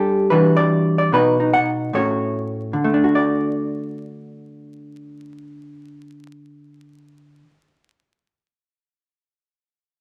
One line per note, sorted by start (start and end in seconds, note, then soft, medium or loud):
0.00 0.30 G3 medium
0.00 0.28 D4 soft
0.00 0.30 G4 medium
0.00 0.30 A4 soft
0.30 1.10 E3 medium
0.30 1.12 G3 soft
0.30 1.10 D4 soft
0.30 1.14 F#4 soft
0.30 0.56 B4 medium
0.57 0.97 D5 medium
0.98 1.12 D5 medium
1.12 1.91 B2 medium
1.12 1.91 B3 soft
1.12 1.38 D#4 soft
1.12 1.92 F#4 soft
1.12 1.53 B4 medium
1.40 1.92 D#4 soft
1.53 1.93 F#5 loud
1.93 2.74 A2 medium
1.93 2.73 A3 soft
1.93 2.73 C#4 soft
1.93 2.73 F#4 soft
1.93 2.75 C#5 medium
2.73 7.43 D3 medium
2.84 7.53 A3 medium
2.94 7.58 D4 medium
3.04 7.63 F#4 medium
3.15 7.65 D5 medium